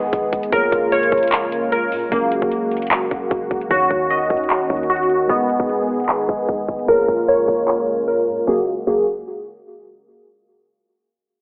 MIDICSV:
0, 0, Header, 1, 6, 480
1, 0, Start_track
1, 0, Key_signature, 6, "major"
1, 0, Tempo, 397351
1, 637, Time_signature, 4, 2, 24, 8
1, 13788, End_track
2, 0, Start_track
2, 0, Title_t, "Tine electric piano"
2, 0, Program_c, 0, 4
2, 0, Control_c, 0, 64, 127
2, 0, Note_on_c, 0, 56, 59
2, 0, Note_on_c, 0, 68, 59
2, 0, Note_on_c, 0, 71, 55
2, 0, Note_on_c, 0, 75, 65
2, 611, Note_on_c, 0, 58, 77
2, 627, Note_off_c, 0, 56, 0
2, 630, Note_on_c, 0, 65, 67
2, 632, Note_off_c, 0, 68, 0
2, 637, Note_off_c, 0, 71, 0
2, 642, Note_off_c, 0, 75, 0
2, 649, Note_on_c, 0, 68, 71
2, 651, Control_c, 0, 64, 0
2, 669, Note_on_c, 0, 73, 83
2, 856, Control_c, 0, 64, 127
2, 2505, Note_off_c, 0, 58, 0
2, 2515, Note_off_c, 0, 65, 0
2, 2524, Note_off_c, 0, 68, 0
2, 2533, Note_on_c, 0, 54, 77
2, 2535, Note_off_c, 0, 73, 0
2, 2553, Note_on_c, 0, 61, 72
2, 2571, Control_c, 0, 64, 0
2, 2572, Note_on_c, 0, 68, 74
2, 2591, Note_on_c, 0, 70, 86
2, 2788, Control_c, 0, 64, 127
2, 4426, Note_off_c, 0, 54, 0
2, 4436, Note_off_c, 0, 61, 0
2, 4445, Note_on_c, 0, 51, 79
2, 4446, Note_off_c, 0, 68, 0
2, 4456, Note_off_c, 0, 70, 0
2, 4465, Note_on_c, 0, 63, 70
2, 4484, Note_on_c, 0, 66, 68
2, 4490, Control_c, 0, 64, 0
2, 4503, Note_on_c, 0, 73, 87
2, 4734, Control_c, 0, 64, 127
2, 5637, Note_off_c, 0, 51, 0
2, 5647, Note_off_c, 0, 63, 0
2, 5656, Note_off_c, 0, 66, 0
2, 5666, Note_off_c, 0, 73, 0
2, 5671, Note_on_c, 0, 51, 63
2, 5681, Note_on_c, 0, 63, 54
2, 5691, Note_on_c, 0, 66, 55
2, 5701, Note_on_c, 0, 73, 64
2, 6362, Note_on_c, 0, 56, 77
2, 6381, Note_on_c, 0, 68, 68
2, 6394, Note_off_c, 0, 51, 0
2, 6399, Note_off_c, 0, 63, 0
2, 6400, Note_on_c, 0, 71, 71
2, 6404, Note_off_c, 0, 66, 0
2, 6409, Note_off_c, 0, 73, 0
2, 6413, Control_c, 0, 64, 0
2, 6420, Note_on_c, 0, 75, 88
2, 6595, Control_c, 0, 64, 127
2, 7555, Note_off_c, 0, 56, 0
2, 7565, Note_off_c, 0, 68, 0
2, 7575, Note_off_c, 0, 71, 0
2, 7579, Note_on_c, 0, 56, 59
2, 7584, Note_off_c, 0, 75, 0
2, 7589, Note_on_c, 0, 68, 61
2, 7599, Note_on_c, 0, 71, 56
2, 7609, Note_on_c, 0, 75, 65
2, 8289, Note_on_c, 0, 58, 77
2, 8308, Note_off_c, 0, 56, 0
2, 8309, Note_on_c, 0, 65, 72
2, 8313, Note_off_c, 0, 68, 0
2, 8318, Note_off_c, 0, 71, 0
2, 8323, Note_off_c, 0, 75, 0
2, 8328, Note_on_c, 0, 68, 70
2, 8333, Control_c, 0, 64, 0
2, 8348, Note_on_c, 0, 73, 85
2, 8513, Control_c, 0, 64, 127
2, 10184, Note_off_c, 0, 58, 0
2, 10194, Note_off_c, 0, 65, 0
2, 10204, Note_off_c, 0, 68, 0
2, 10214, Note_off_c, 0, 73, 0
2, 10236, Note_on_c, 0, 54, 84
2, 10236, Note_on_c, 0, 68, 78
2, 10236, Note_on_c, 0, 70, 93
2, 10237, Note_on_c, 0, 66, 79
2, 10252, Control_c, 0, 64, 0
2, 10376, Note_off_c, 0, 54, 0
2, 10376, Note_off_c, 0, 66, 0
2, 10376, Note_off_c, 0, 68, 0
2, 10376, Note_off_c, 0, 70, 0
2, 10716, Note_on_c, 0, 70, 92
2, 10717, Note_on_c, 0, 54, 85
2, 10717, Note_on_c, 0, 66, 76
2, 10717, Note_on_c, 0, 68, 78
2, 10940, Note_off_c, 0, 54, 0
2, 10940, Note_off_c, 0, 66, 0
2, 10940, Note_off_c, 0, 68, 0
2, 10940, Note_off_c, 0, 70, 0
2, 13788, End_track
3, 0, Start_track
3, 0, Title_t, "Synth keys"
3, 0, Program_c, 1, 88
3, 0, Note_on_c, 1, 59, 97
3, 636, Note_off_c, 1, 59, 0
3, 637, Note_on_c, 1, 70, 93
3, 1117, Note_on_c, 1, 73, 96
3, 2063, Note_off_c, 1, 70, 0
3, 2077, Note_on_c, 1, 70, 84
3, 2557, Note_off_c, 1, 70, 0
3, 2557, Note_off_c, 1, 73, 0
3, 2557, Note_on_c, 1, 58, 94
3, 4477, Note_off_c, 1, 58, 0
3, 4477, Note_on_c, 1, 66, 104
3, 4957, Note_on_c, 1, 75, 88
3, 5903, Note_off_c, 1, 66, 0
3, 5917, Note_on_c, 1, 66, 97
3, 6397, Note_off_c, 1, 66, 0
3, 6397, Note_off_c, 1, 75, 0
3, 6397, Note_on_c, 1, 59, 97
3, 8317, Note_off_c, 1, 59, 0
3, 8317, Note_on_c, 1, 70, 96
3, 8798, Note_on_c, 1, 73, 100
3, 9743, Note_off_c, 1, 70, 0
3, 9757, Note_on_c, 1, 70, 85
3, 10237, Note_off_c, 1, 70, 0
3, 10237, Note_off_c, 1, 73, 0
3, 10237, Note_on_c, 1, 58, 88
3, 10237, Note_on_c, 1, 66, 76
3, 10237, Note_on_c, 1, 68, 94
3, 10376, Note_off_c, 1, 58, 0
3, 10376, Note_off_c, 1, 66, 0
3, 10376, Note_off_c, 1, 68, 0
3, 10716, Note_on_c, 1, 58, 88
3, 10717, Note_on_c, 1, 66, 81
3, 10717, Note_on_c, 1, 68, 93
3, 10940, Note_off_c, 1, 58, 0
3, 10940, Note_off_c, 1, 66, 0
3, 10940, Note_off_c, 1, 68, 0
3, 13788, End_track
4, 0, Start_track
4, 0, Title_t, "Analog synth pad"
4, 0, Program_c, 2, 89
4, 0, Note_on_c, 2, 51, 80
4, 0, Note_on_c, 2, 56, 73
4, 0, Note_on_c, 2, 59, 74
4, 0, Note_on_c, 2, 68, 91
4, 598, Note_off_c, 2, 51, 0
4, 618, Note_off_c, 2, 59, 0
4, 618, Note_off_c, 2, 68, 0
4, 636, Note_on_c, 2, 49, 81
4, 636, Note_on_c, 2, 58, 73
4, 636, Note_on_c, 2, 65, 88
4, 2537, Note_off_c, 2, 65, 0
4, 2557, Note_on_c, 2, 66, 86
4, 4428, Note_off_c, 2, 56, 0
4, 4438, Note_off_c, 2, 49, 0
4, 4477, Note_on_c, 2, 51, 81
4, 4477, Note_on_c, 2, 61, 73
4, 6348, Note_off_c, 2, 58, 0
4, 6359, Note_off_c, 2, 66, 0
4, 6378, Note_off_c, 2, 61, 0
4, 6396, Note_on_c, 2, 56, 73
4, 6397, Note_on_c, 2, 59, 74
4, 6397, Note_on_c, 2, 68, 89
4, 8279, Note_off_c, 2, 51, 0
4, 8297, Note_off_c, 2, 56, 0
4, 8298, Note_off_c, 2, 59, 0
4, 8298, Note_off_c, 2, 68, 0
4, 8316, Note_on_c, 2, 49, 82
4, 8317, Note_on_c, 2, 58, 73
4, 8317, Note_on_c, 2, 65, 85
4, 8318, Note_on_c, 2, 56, 74
4, 10217, Note_off_c, 2, 49, 0
4, 10218, Note_off_c, 2, 56, 0
4, 10218, Note_off_c, 2, 58, 0
4, 10218, Note_off_c, 2, 65, 0
4, 10236, Note_on_c, 2, 56, 66
4, 10237, Note_on_c, 2, 49, 74
4, 10237, Note_on_c, 2, 58, 65
4, 10237, Note_on_c, 2, 66, 81
4, 10460, Note_off_c, 2, 49, 0
4, 10460, Note_off_c, 2, 56, 0
4, 10460, Note_off_c, 2, 58, 0
4, 10460, Note_off_c, 2, 66, 0
4, 13788, End_track
5, 0, Start_track
5, 0, Title_t, "808-style bass"
5, 0, Program_c, 3, 38
5, 0, Note_on_c, 3, 32, 100
5, 147, Note_off_c, 3, 32, 0
5, 157, Note_on_c, 3, 32, 106
5, 387, Note_off_c, 3, 32, 0
5, 396, Note_on_c, 3, 32, 107
5, 627, Note_off_c, 3, 32, 0
5, 636, Note_on_c, 3, 34, 108
5, 867, Note_off_c, 3, 34, 0
5, 877, Note_on_c, 3, 34, 101
5, 1337, Note_off_c, 3, 34, 0
5, 1356, Note_on_c, 3, 34, 107
5, 2316, Note_on_c, 3, 46, 103
5, 2334, Note_off_c, 3, 34, 0
5, 2442, Note_on_c, 3, 34, 104
5, 2460, Note_off_c, 3, 46, 0
5, 2550, Note_off_c, 3, 34, 0
5, 2557, Note_on_c, 3, 30, 114
5, 2909, Note_off_c, 3, 30, 0
5, 2923, Note_on_c, 3, 30, 108
5, 3723, Note_off_c, 3, 30, 0
5, 3758, Note_on_c, 3, 30, 101
5, 3988, Note_off_c, 3, 30, 0
5, 3997, Note_on_c, 3, 30, 105
5, 4227, Note_off_c, 3, 30, 0
5, 4237, Note_on_c, 3, 30, 104
5, 4467, Note_off_c, 3, 30, 0
5, 4477, Note_on_c, 3, 39, 112
5, 4707, Note_off_c, 3, 39, 0
5, 4718, Note_on_c, 3, 39, 103
5, 5178, Note_off_c, 3, 39, 0
5, 5196, Note_on_c, 3, 39, 102
5, 5427, Note_off_c, 3, 39, 0
5, 5678, Note_on_c, 3, 39, 105
5, 6368, Note_off_c, 3, 39, 0
5, 6397, Note_on_c, 3, 32, 113
5, 6749, Note_off_c, 3, 32, 0
5, 6762, Note_on_c, 3, 32, 107
5, 7562, Note_off_c, 3, 32, 0
5, 7597, Note_on_c, 3, 32, 107
5, 7827, Note_off_c, 3, 32, 0
5, 7837, Note_on_c, 3, 32, 108
5, 8067, Note_off_c, 3, 32, 0
5, 8076, Note_on_c, 3, 32, 106
5, 8307, Note_off_c, 3, 32, 0
5, 8316, Note_on_c, 3, 34, 112
5, 8547, Note_off_c, 3, 34, 0
5, 8557, Note_on_c, 3, 34, 106
5, 9017, Note_off_c, 3, 34, 0
5, 9036, Note_on_c, 3, 34, 107
5, 9996, Note_on_c, 3, 46, 100
5, 10014, Note_off_c, 3, 34, 0
5, 10124, Note_on_c, 3, 34, 105
5, 10142, Note_off_c, 3, 46, 0
5, 10231, Note_off_c, 3, 34, 0
5, 10237, Note_on_c, 3, 30, 108
5, 10376, Note_off_c, 3, 30, 0
5, 10717, Note_on_c, 3, 30, 113
5, 11163, Note_off_c, 3, 30, 0
5, 13788, End_track
6, 0, Start_track
6, 0, Title_t, "Drums"
6, 156, Note_on_c, 9, 36, 111
6, 156, Note_on_c, 9, 42, 84
6, 277, Note_off_c, 9, 36, 0
6, 277, Note_off_c, 9, 42, 0
6, 396, Note_on_c, 9, 36, 84
6, 397, Note_on_c, 9, 42, 78
6, 517, Note_off_c, 9, 36, 0
6, 518, Note_off_c, 9, 42, 0
6, 524, Note_on_c, 9, 42, 45
6, 636, Note_off_c, 9, 42, 0
6, 636, Note_on_c, 9, 36, 114
6, 636, Note_on_c, 9, 42, 82
6, 757, Note_off_c, 9, 36, 0
6, 757, Note_off_c, 9, 42, 0
6, 877, Note_on_c, 9, 36, 93
6, 877, Note_on_c, 9, 42, 76
6, 997, Note_off_c, 9, 42, 0
6, 998, Note_off_c, 9, 36, 0
6, 1116, Note_on_c, 9, 42, 59
6, 1237, Note_off_c, 9, 42, 0
6, 1244, Note_on_c, 9, 42, 59
6, 1356, Note_on_c, 9, 36, 104
6, 1357, Note_off_c, 9, 42, 0
6, 1357, Note_on_c, 9, 42, 42
6, 1421, Note_off_c, 9, 42, 0
6, 1421, Note_on_c, 9, 42, 52
6, 1477, Note_off_c, 9, 36, 0
6, 1484, Note_off_c, 9, 42, 0
6, 1484, Note_on_c, 9, 42, 63
6, 1540, Note_off_c, 9, 42, 0
6, 1540, Note_on_c, 9, 42, 73
6, 1597, Note_off_c, 9, 42, 0
6, 1597, Note_on_c, 9, 39, 113
6, 1597, Note_on_c, 9, 42, 77
6, 1718, Note_off_c, 9, 39, 0
6, 1718, Note_off_c, 9, 42, 0
6, 1837, Note_on_c, 9, 42, 71
6, 1958, Note_off_c, 9, 42, 0
6, 2077, Note_on_c, 9, 42, 82
6, 2198, Note_off_c, 9, 42, 0
6, 2317, Note_on_c, 9, 46, 81
6, 2438, Note_off_c, 9, 46, 0
6, 2557, Note_on_c, 9, 36, 117
6, 2557, Note_on_c, 9, 42, 82
6, 2678, Note_off_c, 9, 36, 0
6, 2678, Note_off_c, 9, 42, 0
6, 2797, Note_on_c, 9, 42, 80
6, 2918, Note_off_c, 9, 42, 0
6, 2923, Note_on_c, 9, 36, 98
6, 3037, Note_on_c, 9, 42, 70
6, 3044, Note_off_c, 9, 36, 0
6, 3158, Note_off_c, 9, 42, 0
6, 3277, Note_on_c, 9, 42, 42
6, 3341, Note_off_c, 9, 42, 0
6, 3341, Note_on_c, 9, 42, 52
6, 3405, Note_off_c, 9, 42, 0
6, 3405, Note_on_c, 9, 42, 63
6, 3461, Note_off_c, 9, 42, 0
6, 3461, Note_on_c, 9, 42, 73
6, 3517, Note_off_c, 9, 42, 0
6, 3517, Note_on_c, 9, 39, 115
6, 3517, Note_on_c, 9, 42, 80
6, 3638, Note_off_c, 9, 39, 0
6, 3638, Note_off_c, 9, 42, 0
6, 3757, Note_on_c, 9, 42, 74
6, 3758, Note_on_c, 9, 36, 100
6, 3878, Note_off_c, 9, 42, 0
6, 3879, Note_off_c, 9, 36, 0
6, 3997, Note_on_c, 9, 36, 114
6, 3997, Note_on_c, 9, 42, 83
6, 4118, Note_off_c, 9, 36, 0
6, 4118, Note_off_c, 9, 42, 0
6, 4237, Note_on_c, 9, 36, 87
6, 4237, Note_on_c, 9, 42, 79
6, 4358, Note_off_c, 9, 36, 0
6, 4358, Note_off_c, 9, 42, 0
6, 4364, Note_on_c, 9, 42, 47
6, 4476, Note_off_c, 9, 42, 0
6, 4476, Note_on_c, 9, 42, 82
6, 4477, Note_on_c, 9, 36, 117
6, 4597, Note_off_c, 9, 42, 0
6, 4598, Note_off_c, 9, 36, 0
6, 4717, Note_on_c, 9, 36, 92
6, 4717, Note_on_c, 9, 42, 78
6, 4838, Note_off_c, 9, 36, 0
6, 4838, Note_off_c, 9, 42, 0
6, 4957, Note_on_c, 9, 42, 69
6, 5078, Note_off_c, 9, 42, 0
6, 5196, Note_on_c, 9, 36, 107
6, 5197, Note_on_c, 9, 42, 44
6, 5277, Note_off_c, 9, 42, 0
6, 5277, Note_on_c, 9, 42, 57
6, 5317, Note_off_c, 9, 36, 0
6, 5357, Note_off_c, 9, 42, 0
6, 5357, Note_on_c, 9, 42, 73
6, 5437, Note_off_c, 9, 42, 0
6, 5437, Note_on_c, 9, 39, 111
6, 5437, Note_on_c, 9, 42, 80
6, 5558, Note_off_c, 9, 39, 0
6, 5558, Note_off_c, 9, 42, 0
6, 5677, Note_on_c, 9, 42, 44
6, 5678, Note_on_c, 9, 36, 104
6, 5758, Note_off_c, 9, 42, 0
6, 5758, Note_on_c, 9, 42, 51
6, 5798, Note_off_c, 9, 36, 0
6, 5837, Note_off_c, 9, 42, 0
6, 5837, Note_on_c, 9, 42, 55
6, 5918, Note_off_c, 9, 42, 0
6, 5918, Note_on_c, 9, 42, 64
6, 5997, Note_off_c, 9, 42, 0
6, 5997, Note_on_c, 9, 42, 68
6, 6077, Note_off_c, 9, 42, 0
6, 6077, Note_on_c, 9, 42, 73
6, 6157, Note_off_c, 9, 42, 0
6, 6157, Note_on_c, 9, 42, 84
6, 6277, Note_off_c, 9, 42, 0
6, 6396, Note_on_c, 9, 42, 82
6, 6397, Note_on_c, 9, 36, 114
6, 6517, Note_off_c, 9, 36, 0
6, 6517, Note_off_c, 9, 42, 0
6, 6636, Note_on_c, 9, 42, 79
6, 6757, Note_off_c, 9, 42, 0
6, 6762, Note_on_c, 9, 36, 102
6, 6876, Note_on_c, 9, 42, 69
6, 6883, Note_off_c, 9, 36, 0
6, 6997, Note_off_c, 9, 42, 0
6, 7116, Note_on_c, 9, 42, 42
6, 7180, Note_off_c, 9, 42, 0
6, 7180, Note_on_c, 9, 42, 54
6, 7244, Note_off_c, 9, 42, 0
6, 7244, Note_on_c, 9, 42, 62
6, 7300, Note_off_c, 9, 42, 0
6, 7300, Note_on_c, 9, 42, 73
6, 7357, Note_off_c, 9, 42, 0
6, 7357, Note_on_c, 9, 39, 114
6, 7357, Note_on_c, 9, 42, 79
6, 7477, Note_off_c, 9, 39, 0
6, 7478, Note_off_c, 9, 42, 0
6, 7597, Note_on_c, 9, 36, 106
6, 7597, Note_on_c, 9, 42, 77
6, 7718, Note_off_c, 9, 36, 0
6, 7718, Note_off_c, 9, 42, 0
6, 7837, Note_on_c, 9, 36, 114
6, 7837, Note_on_c, 9, 42, 82
6, 7957, Note_off_c, 9, 36, 0
6, 7958, Note_off_c, 9, 42, 0
6, 8076, Note_on_c, 9, 36, 86
6, 8076, Note_on_c, 9, 42, 77
6, 8197, Note_off_c, 9, 36, 0
6, 8197, Note_off_c, 9, 42, 0
6, 8204, Note_on_c, 9, 42, 46
6, 8316, Note_off_c, 9, 42, 0
6, 8316, Note_on_c, 9, 36, 114
6, 8316, Note_on_c, 9, 42, 82
6, 8437, Note_off_c, 9, 36, 0
6, 8437, Note_off_c, 9, 42, 0
6, 8557, Note_on_c, 9, 36, 91
6, 8557, Note_on_c, 9, 42, 78
6, 8677, Note_off_c, 9, 42, 0
6, 8678, Note_off_c, 9, 36, 0
6, 8797, Note_on_c, 9, 42, 60
6, 8918, Note_off_c, 9, 42, 0
6, 8924, Note_on_c, 9, 42, 60
6, 9036, Note_off_c, 9, 42, 0
6, 9036, Note_on_c, 9, 36, 103
6, 9036, Note_on_c, 9, 42, 44
6, 9100, Note_off_c, 9, 42, 0
6, 9100, Note_on_c, 9, 42, 52
6, 9157, Note_off_c, 9, 36, 0
6, 9164, Note_off_c, 9, 42, 0
6, 9164, Note_on_c, 9, 42, 65
6, 9220, Note_off_c, 9, 42, 0
6, 9220, Note_on_c, 9, 42, 71
6, 9276, Note_off_c, 9, 42, 0
6, 9276, Note_on_c, 9, 39, 114
6, 9276, Note_on_c, 9, 42, 81
6, 9397, Note_off_c, 9, 39, 0
6, 9397, Note_off_c, 9, 42, 0
6, 9516, Note_on_c, 9, 42, 69
6, 9637, Note_off_c, 9, 42, 0
6, 9756, Note_on_c, 9, 42, 85
6, 9877, Note_off_c, 9, 42, 0
6, 9996, Note_on_c, 9, 46, 86
6, 10117, Note_off_c, 9, 46, 0
6, 10236, Note_on_c, 9, 36, 105
6, 10236, Note_on_c, 9, 38, 89
6, 10357, Note_off_c, 9, 36, 0
6, 10357, Note_off_c, 9, 38, 0
6, 10716, Note_on_c, 9, 49, 87
6, 10717, Note_on_c, 9, 36, 105
6, 10837, Note_off_c, 9, 36, 0
6, 10837, Note_off_c, 9, 49, 0
6, 13788, End_track
0, 0, End_of_file